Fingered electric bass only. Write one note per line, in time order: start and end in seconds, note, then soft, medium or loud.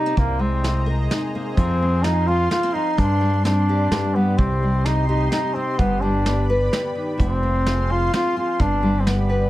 0.17 1.07 C2 medium
1.57 2.47 F2 medium
2.98 3.87 G2 medium
3.91 4.36 G2 loud
4.38 5.28 C2 medium
5.79 6.68 G1 medium
7.19 8.08 F1 medium
8.60 9.49 G1 medium